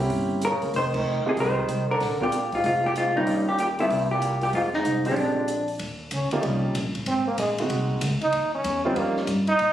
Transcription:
0.00 0.40 A#3 medium
0.00 0.40 C4 medium
0.00 0.40 C#4 medium
0.00 0.40 E4 medium
0.00 0.40 G4 medium
0.10 0.50 G1 medium
0.10 kick soft
0.10 open hi-hat soft
0.42 0.72 C#3 medium
0.42 0.73 A#4 loud
0.42 closed hi-hat medium
0.52 0.62 A#1 medium
0.62 0.73 F#1 medium
0.62 open hi-hat soft
0.73 1.22 F1 medium
0.73 0.96 D#3 medium
0.73 0.97 C5 loud
0.73 kick soft
0.73 open hi-hat soft
0.94 1.25 D#3 medium
0.94 1.28 A#4 loud
0.94 kick medium
0.94 crash medium
1.26 1.31 C3 medium
1.26 1.67 G#3 medium
1.26 1.67 C4 medium
1.26 1.67 D#4 medium
1.26 1.67 F4 medium
1.26 1.67 G4 medium
1.26 1.33 G#4 medium
1.26 muted upright bass stroke soft
1.37 1.66 C2 medium
1.37 1.86 D#3 medium
1.37 1.91 C5 loud
1.37 kick soft
1.37 open hi-hat soft
1.68 1.98 C2 medium
1.68 closed hi-hat medium
1.91 2.20 D3 medium
1.91 2.23 A#4 medium
2.00 2.61 A#1 medium
2.00 kick soft
2.00 snare soft
2.00 open hi-hat soft
2.21 2.50 A#2 medium
2.21 2.31 G#3 medium
2.21 2.31 A#3 medium
2.21 2.31 C4 medium
2.21 2.32 D4 medium
2.21 2.32 F4 medium
2.21 2.55 G4 medium
2.21 kick medium
2.32 closed hi-hat medium
2.52 2.64 G#2 medium
2.52 2.64 F4 medium
2.52 kick medium
2.52 open hi-hat soft
2.64 3.24 F1 medium
2.64 2.83 G#2 medium
2.64 2.86 F4 medium
2.64 kick soft
2.64 open hi-hat soft
2.84 2.89 A#2 medium
2.84 2.91 G4 medium
2.95 3.14 G#2 medium
2.95 3.16 F4 medium
2.95 closed hi-hat medium
3.15 3.45 G2 medium
3.15 3.57 G3 medium
3.15 3.57 A#3 medium
3.15 3.57 C#4 medium
3.15 3.57 D#4 medium
3.15 3.46 D#4 medium
3.15 3.57 G4 medium
3.27 3.87 D#2 medium
3.27 kick soft
3.27 open hi-hat soft
3.47 3.58 A#2 medium
3.47 3.59 G4 medium
3.58 3.68 A#2 medium
3.58 3.65 G4 medium
3.58 closed hi-hat medium
3.79 4.09 G2 medium
3.79 4.20 G3 medium
3.79 4.20 A#3 medium
3.79 4.20 C4 medium
3.79 4.20 E4 medium
3.79 4.12 E4 medium
3.79 4.20 G4 medium
3.79 open hi-hat soft
3.90 4.50 C2 medium
3.90 kick soft
3.90 open hi-hat soft
4.11 4.40 A#2 medium
4.11 4.40 G4 medium
4.22 closed hi-hat medium
4.41 4.47 A#2 medium
4.41 4.48 G4 medium
4.41 open hi-hat soft
4.53 4.83 F2 medium
4.53 4.69 G#2 medium
4.53 4.60 F4 medium
4.53 kick soft
4.53 open hi-hat soft
4.73 5.05 G#2 medium
4.73 5.07 D#4 medium
4.73 snare soft
4.85 5.15 C2 medium
4.85 closed hi-hat medium
5.05 5.65 F2 medium
5.05 5.47 F3 medium
5.05 5.46 G#3 medium
5.05 5.47 C4 medium
5.05 5.47 D4 medium
5.05 5.66 D4 medium
5.05 5.47 G4 medium
5.05 open hi-hat soft
5.16 5.77 A#1 medium
5.16 kick soft
5.16 open hi-hat soft
5.48 closed hi-hat medium
5.68 open hi-hat soft
5.79 6.11 D#2 medium
5.79 kick soft
5.79 ride medium
6.11 6.30 C#2 medium
6.11 6.32 C#4 medium
6.11 kick soft
6.11 hi-hat pedal soft
6.11 ride medium
6.31 6.73 F3 medium
6.31 6.73 A#3 medium
6.31 6.46 A#3 medium
6.31 6.73 C#4 medium
6.31 6.73 D#4 medium
6.31 6.73 G4 medium
6.31 muted upright bass stroke soft
6.31 ride medium
6.43 6.74 C2 medium
6.43 6.64 G3 medium
6.43 kick soft
6.43 ride medium
6.74 6.87 A#1 medium
6.74 kick soft
6.74 hi-hat pedal medium
6.74 ride medium
6.85 6.95 G1 medium
6.95 7.06 D#1 medium
6.95 ride soft
7.06 7.37 G#1 medium
7.06 7.26 C4 medium
7.06 kick soft
7.06 ride medium
7.28 7.38 A#3 medium
7.38 7.69 A#1 medium
7.38 7.51 G#3 medium
7.38 kick soft
7.38 hi-hat pedal medium
7.38 ride medium
7.58 8.00 G#3 medium
7.58 8.00 A#3 medium
7.58 8.00 C4 medium
7.58 8.00 D#4 medium
7.58 8.00 F#4 medium
7.58 ride soft
7.70 8.01 C2 medium
7.70 kick soft
7.70 ride medium
8.01 8.20 C#2 loud
8.01 kick soft
8.01 hi-hat pedal medium
8.01 ride medium
8.21 8.52 D#4 medium
8.21 muted upright bass stroke soft
8.21 ride soft
8.32 8.64 D#2 medium
8.32 kick soft
8.32 ride medium
8.55 8.84 C#4 medium
8.64 8.95 E2 medium
8.64 kick soft
8.64 hi-hat pedal medium
8.64 ride medium
8.85 9.26 G3 medium
8.85 9.26 A#3 medium
8.85 9.00 C4 loud
8.85 9.26 C#4 medium
8.85 9.26 D#4 medium
8.85 9.26 F4 medium
8.96 9.27 F2 medium
8.96 9.18 A#3 medium
8.96 kick soft
8.96 ride medium
9.17 snare soft
9.27 9.59 G2 loud
9.27 kick soft
9.27 hi-hat pedal medium
9.27 ride medium
9.47 9.73 D#4 loud
9.47 ride soft
9.59 9.73 A#2 medium
9.59 kick soft
9.59 ride medium

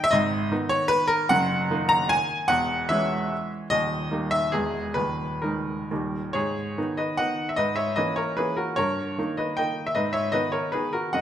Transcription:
0.04 0.13 E5 loud
0.11 0.50 G#1 medium
0.11 0.50 G#2 medium
0.11 0.69 D#5 loud
0.51 1.27 D#3 medium
0.51 1.27 B3 medium
0.51 1.27 D#4 medium
0.69 0.89 C#5 loud
0.88 1.10 B4 loud
1.08 1.30 A#4 loud
1.29 1.70 F#1 medium
1.29 1.70 F#2 medium
1.29 1.91 F#5 loud
1.70 2.46 D#3 medium
1.70 2.46 A#3 medium
1.70 2.46 D#4 medium
1.89 2.10 A#5 loud
2.09 2.49 G#5 loud
2.48 2.88 E1 medium
2.48 2.89 E2 medium
2.48 2.89 F#5 loud
2.89 3.67 E3 medium
2.89 3.67 G#3 medium
2.89 3.67 C#4 medium
2.89 3.51 E5 loud
3.70 4.10 D#1 medium
3.70 4.10 D#2 medium
3.70 4.32 D#5 loud
4.11 4.49 G3 soft
4.11 4.50 A#3 soft
4.11 4.50 D#4 medium
4.31 4.53 E5 loud
4.52 4.95 E1 soft
4.52 4.95 E2 medium
4.52 4.92 G#3 soft
4.52 4.93 B3 soft
4.52 4.96 G#4 medium
4.94 5.42 D#1 soft
4.94 5.42 D#2 medium
4.94 5.42 B4 medium
5.42 5.87 D#3 soft
5.42 5.87 G#3 soft
5.42 5.87 D#4 soft
5.42 6.13 A#4 medium
5.91 6.34 D#1 medium
5.91 6.34 D#2 medium
5.91 6.31 D#3 soft
5.91 6.32 G3 soft
5.91 6.32 D#4 soft
6.33 6.76 G#2 medium
6.33 6.94 G#4 medium
6.33 6.97 C#5 medium
6.78 7.15 D#3 medium
6.78 7.15 B3 soft
6.78 7.15 D#4 medium
6.97 7.17 B4 medium
6.97 7.17 D#5 medium
7.17 7.54 D#3 soft
7.17 7.54 B3 soft
7.17 7.54 D#4 soft
7.17 7.46 D#5 medium
7.17 7.47 F#5 loud
7.49 7.58 E5 medium
7.56 7.96 G#2 medium
7.56 7.76 B4 medium
7.56 7.76 D#5 medium
7.76 7.96 C#5 medium
7.76 7.97 E5 medium
7.96 8.34 E3 soft
7.96 8.34 A#3 medium
7.96 8.34 C#4 medium
7.96 8.16 B4 medium
7.96 8.17 D#5 medium
8.16 8.36 A#4 medium
8.16 8.37 C#5 medium
8.37 8.74 E3 soft
8.37 8.74 A#3 soft
8.37 8.74 C#4 soft
8.37 8.56 G#4 medium
8.37 8.57 B4 medium
8.57 8.76 F#4 medium
8.57 8.76 A#4 medium
8.76 9.17 G2 medium
8.76 9.35 A#4 medium
8.76 9.38 C#5 loud
9.18 9.54 D#3 soft
9.18 9.54 A#3 medium
9.18 9.55 D#4 medium
9.37 9.57 B4 medium
9.37 9.57 D#5 medium
9.57 9.92 D#3 soft
9.57 9.92 A#3 soft
9.57 9.93 D#4 soft
9.57 9.84 D#5 medium
9.57 9.86 G5 medium
9.87 9.96 E5 medium
9.95 10.33 G#2 medium
9.95 10.13 B4 medium
9.95 10.14 D#5 medium
10.13 10.32 C#5 medium
10.13 10.33 E5 medium
10.32 10.69 D#3 medium
10.32 10.69 B3 medium
10.32 10.69 D#4 medium
10.32 10.52 B4 medium
10.32 10.53 D#5 medium
10.52 10.71 A#4 medium
10.52 10.72 C#5 medium
10.72 11.10 D#3 soft
10.72 11.11 B3 soft
10.72 11.11 D#4 soft
10.72 10.92 G#4 medium
10.72 10.93 B4 medium
10.93 11.13 F#4 medium
10.93 11.14 A#4 medium
11.13 11.21 F#2 medium
11.13 11.21 D#5 medium
11.13 11.21 F#5 medium

